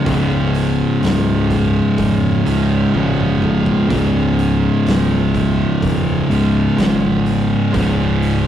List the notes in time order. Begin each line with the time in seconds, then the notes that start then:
0.05 C#1 C#2 G#2 C#3, kick, open hi-hat
0.55 open hi-hat
1.02 C#1, snare, open hi-hat
1.50 kick, open hi-hat
1.98 E1, kick, open hi-hat
2.45 C#1 C#2 G#2 C#3, open hi-hat
2.93 G#1 C#2 G#2 C#3, high tom
3.19 mid tom
3.42 mid tom
3.66 kick
3.89 C#1 C#2 G#2, kick, open hi-hat
3.93 C#3
4.39 open hi-hat
4.86 C#1, snare, open hi-hat
5.35 kick, open hi-hat
5.82 E1, kick, open hi-hat
6.29 C#1 C#2 G#2 C#3, open hi-hat
6.77 G#1 C#2 G#2 C#3, snare, open hi-hat
7.26 open hi-hat
7.73 C#1 C#2 G#2 C#3, kick, open hi-hat
8.22 open hi-hat